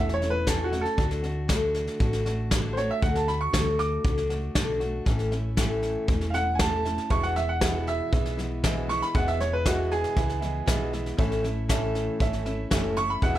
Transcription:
Already playing: fingered electric bass E1, steel-string acoustic guitar E3 A3 C#4 E4, upright piano E5
0.09 snare
0.14 upright piano C#5
0.20 steel-string acoustic guitar A3 C#4 E4, snare
0.30 upright piano B4
0.46 steel-string acoustic guitar A2 E3 A3 C#4 E4, upright piano A4, kick, snare, hi-hat pedal
0.64 upright piano F#4
0.72 steel-string acoustic guitar A3 C#4 E4, snare
0.81 upright piano A4, snare
0.97 fingered electric bass D2, steel-string acoustic guitar D3 A3 D4 F#4, kick, snare
1.11 snare
1.23 steel-string acoustic guitar A3 D4 F#4, snare
1.48 steel-string acoustic guitar D3 A3 D4 F#4, kick, snare, hi-hat pedal
1.74 snare
1.87 snare
1.99 fingered electric bass A1, steel-string acoustic guitar D3 A3 D4 F#4, kick, snare
2.13 snare
2.25 steel-string acoustic guitar A3 D4 F#4, snare
2.51 steel-string acoustic guitar D3 A3 D4 F#4, kick, snare, hi-hat pedal
2.73 steel-string acoustic guitar F#4, upright piano C5
2.77 steel-string acoustic guitar A3 D4, upright piano C#5, snare
2.91 upright piano E5
3.02 fingered electric bass D2, steel-string acoustic guitar D3 A3 D4 F#4, upright piano F#5, kick, snare
3.15 upright piano A5, snare
3.27 steel-string acoustic guitar A3 D4 F#4, upright piano B5, snare
3.41 upright piano C#6
3.53 fingered electric bass D2, steel-string acoustic guitar D3 A3 D4 F#4, kick, snare, hi-hat pedal
3.79 upright piano D6, snare
4.04 fingered electric bass C#2, steel-string acoustic guitar D3 A3 D4 F#4, kick, snare
4.18 snare
4.29 steel-string acoustic guitar A3 D4 F#4, snare
4.55 fingered electric bass B1, steel-string acoustic guitar D3 A3 D4 F#4, kick, snare, hi-hat pedal
4.80 steel-string acoustic guitar A3 D4 F#4, snare
5.05 fingered electric bass A1, steel-string acoustic guitar A2 E3 A3 C#4 E4, kick, snare
5.19 snare
5.31 steel-string acoustic guitar A3 C#4 E4, snare
5.57 steel-string acoustic guitar A2 E3 A3 C#4 E4, kick, snare, hi-hat pedal
5.83 snare
6.07 fingered electric bass E1, steel-string acoustic guitar E3 A3 C#4 E4, kick, snare
6.21 snare
6.30 steel-string acoustic guitar E4, upright piano F5, snare
6.34 steel-string acoustic guitar A3 C#4, upright piano F#5
6.55 steel-string acoustic guitar A2, upright piano G#5
6.59 steel-string acoustic guitar E3 A3 C#4 E4, upright piano A5, kick, snare, hi-hat pedal
6.84 steel-string acoustic guitar A3 C#4 E4, snare
6.98 snare
7.09 fingered electric bass E1, steel-string acoustic guitar E2 B2 E3 G#3 B3 E4, upright piano G#4 B4 E5 C#6, kick, snare
7.23 upright piano F#5, snare
7.35 steel-string acoustic guitar E3 G#3 B3 E4, upright piano E5, snare
7.49 upright piano F#5
7.60 steel-string acoustic guitar E2 B2 E3 G#3 B3 E4, upright piano G#4 B4 E5, kick, snare, hi-hat pedal
7.87 upright piano E5, snare
8.12 fingered electric bass B1, steel-string acoustic guitar E3 G#3 B3 E4, upright piano G#4 B4 E5, kick, snare
8.26 snare
8.37 steel-string acoustic guitar E3 G#3 B3 E4, snare
8.63 steel-string acoustic guitar E2 B2 E3 G#3 B3 E4, upright piano G#4 B4 E5, kick, snare, hi-hat pedal
8.88 steel-string acoustic guitar E3 G#3 B3 E4, upright piano C#6, snare
9.02 upright piano B5, snare
9.14 fingered electric bass E1, steel-string acoustic guitar E2 B2 E3 G#3 B3 E4, upright piano G#4 B4 E5 F#5, kick, snare
9.28 upright piano E5, snare
9.39 steel-string acoustic guitar E3 G#3 B3 E4, upright piano C#5, snare
9.53 upright piano B4
9.65 steel-string acoustic guitar E2 B2 E3 G#3 B3 E4, upright piano F#4 G#4 B4 E5, kick, snare, hi-hat pedal
9.91 upright piano G#4, snare
10.04 snare
10.15 fingered electric bass C#2, steel-string acoustic guitar E3 G#3 B3 E4, upright piano G#4 B4 E5, kick, snare
10.29 snare
10.41 steel-string acoustic guitar E3 G#3 B3 E4, snare
10.66 fingered electric bass B1, steel-string acoustic guitar E2 B2 E3 G#3 B3 E4, upright piano G#4 B4 E5, kick, snare, hi-hat pedal
10.92 steel-string acoustic guitar E3 G#3 B3 E4, snare
11.06 snare
11.17 fingered electric bass A1, steel-string acoustic guitar A2 E3 A3 C#4 E4, upright piano A4 C#5 E5, kick, snare
11.32 snare
11.43 steel-string acoustic guitar A3 C#4 E4, snare
11.69 steel-string acoustic guitar A2 E3 A3 C#4 E4, upright piano A4 C#5 E5, kick, snare, hi-hat pedal
11.95 snare
12.19 fingered electric bass G#1, steel-string acoustic guitar E3 A3 C#4 E4, upright piano A4 C#5 E5, kick, snare
12.33 snare
12.45 steel-string acoustic guitar A3 C#4 E4, snare
12.71 fingered electric bass F#1, steel-string acoustic guitar A2 E3 A3 C#4 E4, upright piano A4 C#5 E5, kick, snare, hi-hat pedal
12.96 steel-string acoustic guitar A3 C#4 E4, upright piano C#6, snare
13.10 upright piano B5
13.22 fingered electric bass E1, steel-string acoustic guitar E2 B2 E3 G#3 B3 E4, upright piano G#4 B4 E5 F#5, kick, snare
13.35 upright piano E5, snare

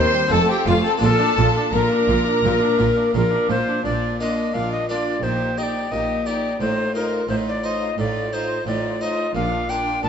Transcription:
Already playing: harpsichord D#2 C4 G4, viola section D#3, violin section C5 C6, recorder C5
0.14 viola section G3
0.27 harpsichord C4 F4, violin section A4
0.31 double bass section F1, harpsichord F2, cello section F2, viola section A3, recorder A4, violin section A5
0.48 viola section C4, violin section G4 G5, recorder G4
0.66 double bass section F1, harpsichord F2, cello section F2, viola section A3, violin section F4 F5, recorder F4
0.83 viola section C4, violin section A4 A5, recorder A4
0.97 double bass section A#1, harpsichord A#3 D4 F4, violin section A4
1.02 harpsichord A#2, cello section A#2, viola section F4, recorder A4, violin section A5
1.19 viola section D4
1.37 double bass section A#1, harpsichord A#2, cello section A#2, viola section F4
1.55 viola section D4
1.72 double bass section A#1, harpsichord A#2, cello section A#2, viola section F4, violin section A#4 A#5, recorder A#4
1.91 viola section D4
2.08 double bass section A#1, cello section A#2, harpsichord A#2, viola section F4
2.26 viola section D4
2.43 double bass section A#1, cello section A#2, harpsichord A#2, viola section F4
2.61 viola section D4
2.79 double bass section A#1, cello section A#2, harpsichord A#2, viola section F4
2.97 viola section D4
3.14 double bass section A#1, cello section A#2, harpsichord A#2, viola section F4, recorder A#4
3.32 viola section D4
3.49 double bass section A#1, harpsichord A#2, cello section A#2, viola section F4, recorder C5
3.67 viola section D4
3.84 double bass section A#1, cello section A#2, harpsichord A#2, viola section D4, violin section F4 A#4, recorder D5
4.19 harpsichord A#3 D4 F4, viola section D4, violin section F4 A#4, recorder D#5
4.53 double bass section A#1, cello section A#2, harpsichord A#2, viola section D4, violin section F4 A#4, recorder F5
4.72 recorder D#5
4.88 harpsichord A#3 D4 F4, viola section D4, violin section F4 A#4, recorder D5
5.23 double bass section A#1, harpsichord A#2, cello section A#2, viola section D#4, violin section G4 C5, recorder C5
5.57 viola section D#4, harpsichord D#4 G4, violin section G4 C5, recorder D#5
5.63 recorder D5
5.92 double bass section A#1, cello section A#2, harpsichord A#2, viola section D#4, violin section G4 C5, recorder D#5
6.25 harpsichord D#4 G4, viola section D#4, violin section G4 C5, recorder D5
6.60 double bass section A1, harpsichord A2, cello section A2, viola section D#4, violin section F4 C5, recorder C5
6.94 viola section D#4, harpsichord D#4 C5, violin section F4 C5, recorder A#4
7.28 double bass section A1, harpsichord A2, cello section A2, viola section D#4, violin section F4 C5, recorder C5
7.48 recorder D5
7.63 harpsichord D#4 C5, viola section D#4, violin section F4 C5, recorder D#5
7.98 double bass section A1, cello section A2, harpsichord A2, viola section D#4, violin section F4 C5, recorder D5
8.32 harpsichord D#4 C5, viola section D#4, violin section F4 C5, recorder C5
8.66 double bass section A1, harpsichord A2, cello section A2, viola section D#4, violin section F4 C5, recorder D5
9.01 harpsichord D#4 C5, viola section D#4, violin section F4 C5, recorder D#5
9.35 double bass section A#1, harpsichord A#2, cello section A#2, viola section D4, violin section F4 A#4, recorder F5
9.69 harpsichord D4 A#4, viola section D4, violin section F4 A#4, recorder G5
10.03 double bass section A#1, harpsichord A#2, cello section A#2, viola section D4, violin section F4 A#4, recorder A5

